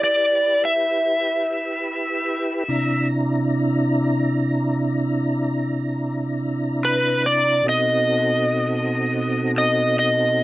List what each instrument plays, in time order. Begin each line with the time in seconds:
Already playing: tonewheel organ E4 G4 B4
0.04 electric slide guitar D5
0.65 electric slide guitar E5
2.68 tonewheel organ C3 D4 E4 A#5
6.85 electric slide guitar B4
7.26 electric slide guitar D5
7.64 tonewheel organ B2 C4 D#4 F#4 A4
7.69 electric slide guitar D#5
9.58 electric slide guitar D#5
9.99 electric slide guitar D#5